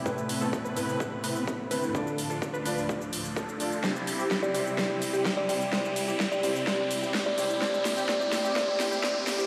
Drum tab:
HH |--o---o---o---o-|--o---o---o---o-|--o---o---o---o-|--o---o---o---o-|
SH |xxxxxxxxx-xxx-xx|xxxxxxxxxxxxxxxx|xxxxxxxxx-xxx-xx|xxxxxxxxx-xxx-xx|
SD |----------------|----------------|o---o---o---o---|o---o---o---o---|
BD |o---o---o---o---|o---o---o---o---|o---o---o---o---|o---o---o---o---|

HH |--o---o---o---o-|
SH |xxxxxxxxx-xxx-xx|
SD |o-o-o-o-o-o-o-o-|
BD |o---o---o---o---|